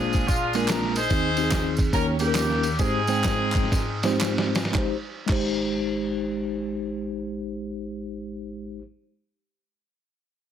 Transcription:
Already playing: tine electric piano A#1 A#2 G#3 A#3 D4 F4 C5, horn section G#3 D4 F4 G#4
0.13 kick, ride, tambourine
0.27 horn section G#3 D4 F4, kick, ride, tambourine
0.53 tine electric piano G#3 A#3 D4 F4 A#4, horn section G#4, ride, tambourine
0.68 horn section A#4, snare, clap, ride, tambourine
0.83 snare
0.96 horn section D#4 G#4 C5, ride, tambourine
1.10 tine electric piano D#2 D#3 C4 D#4 G#4, kick, ride, tambourine
1.37 tine electric piano C4 D#4 G4, ride, tambourine
1.44 tine electric piano G#4
1.51 kick, snare, clap, ride, tambourine
1.77 kick, ride, tambourine
1.93 tine electric piano D#2 D#3 A#3 C#4 D#4 G4 C#5, horn section C#4 G4 A#4, kick, ride, tambourine
2.19 horn section A#3 C#4 G4, tine electric piano A#3 C#4 D#4 G4 G#4, ride, tambourine
2.27 tine electric piano A#4
2.35 snare, clap, ride, tambourine
2.50 snare
2.63 ride, tambourine
2.79 tine electric piano G#2 G#3 C4 D#4 G4 C5, horn section C4 D#4 G#4, kick, ride, tambourine
3.07 tine electric piano G#3 C4 D#4 C5 G5, ride, tambourine
3.24 kick, snare, clap, ride, tambourine
3.53 kick, clap, ride, tambourine
3.63 snare
3.72 kick, snare, ride, tambourine
4.03 tine electric piano G#3 C4 D#4 G4 C5, snare, ride, tambourine
4.21 snare, clap, ride, tambourine
4.38 snare
4.55 snare, ride, tambourine
4.65 snare
4.72 tine electric piano G#1 G#3 D#4, kick, snare, clap
4.76 tine electric piano G4 C5
5.26 tine electric piano G#1 G#3 D#4 G4, kick, clap, crash
5.32 tine electric piano C5

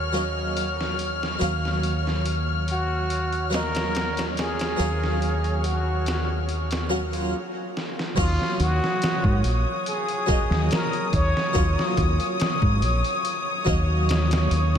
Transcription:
Already playing: fingered electric bass D#2, harpsichord C#4 F5, string section C#5 F6
0.13 harpsichord F#3 A#3 C#4 D#4, closed hi-hat
0.57 closed hi-hat
0.81 snare
0.99 closed hi-hat
1.23 snare
1.39 fingered electric bass D#2, harpsichord F#3 A#3 C#4, closed hi-hat
1.43 harpsichord F5
1.65 snare
1.83 closed hi-hat
2.07 snare
2.26 closed hi-hat
2.68 muted trumpet F#4, closed hi-hat
3.10 closed hi-hat
3.33 closed hi-hat
3.50 harpsichord F#3 A#3 C#4, closed hi-hat
3.54 harpsichord D#4, muted trumpet A#4, snare
3.75 snare, closed hi-hat
3.95 snare, closed hi-hat
4.17 snare, closed hi-hat
4.37 muted trumpet G#4, snare, closed hi-hat
4.59 snare, closed hi-hat
4.77 fingered electric bass D#2, harpsichord F#3 A#3 C#4, closed hi-hat
4.81 harpsichord F5
5.04 snare
5.22 closed hi-hat
5.44 closed hi-hat
5.64 muted trumpet F#4, closed hi-hat
6.06 snare, closed hi-hat
6.49 closed hi-hat
6.71 snare, closed hi-hat
6.89 harpsichord F#3 A#3 C#4 F#4
7.11 harpsichord F#3 A#3 C#4, closed hi-hat
7.15 harpsichord F4
7.77 snare
7.99 snare
8.16 fingered electric bass D#2, harpsichord F#3 A#3 C#4 F5, muted trumpet F4, string section C#5 D#6, kick, closed hi-hat, crash
8.42 snare
8.60 fingered electric bass D#2, muted trumpet F#4, closed hi-hat
8.84 snare
9.02 snare, closed hi-hat
9.24 fingered electric bass G#2, kick
9.44 fingered electric bass A#1, closed hi-hat
9.86 muted trumpet G#4, closed hi-hat
10.09 closed hi-hat
10.26 harpsichord F#3 A#3 C#4, kick, closed hi-hat
10.31 harpsichord D#4
10.51 fingered electric bass D#2, snare
10.71 muted trumpet A#4, snare, closed hi-hat
10.93 closed hi-hat
11.13 fingered electric bass D#2, muted trumpet C#5, kick, closed hi-hat
11.37 snare
11.53 fingered electric bass D#2, harpsichord F#3 A#3 C#4, kick, closed hi-hat
11.57 harpsichord F4
11.79 snare
11.97 fingered electric bass D#2, kick, closed hi-hat
12.20 closed hi-hat
12.40 snare, closed hi-hat
12.62 fingered electric bass G#2, kick
12.82 fingered electric bass A#1, closed hi-hat
13.04 closed hi-hat
13.25 closed hi-hat
13.65 fingered electric bass D#2, harpsichord F#3 A#3 C#4 D#4, kick, closed hi-hat
14.09 snare, closed hi-hat
14.31 snare, closed hi-hat
14.51 fingered electric bass D#2, closed hi-hat

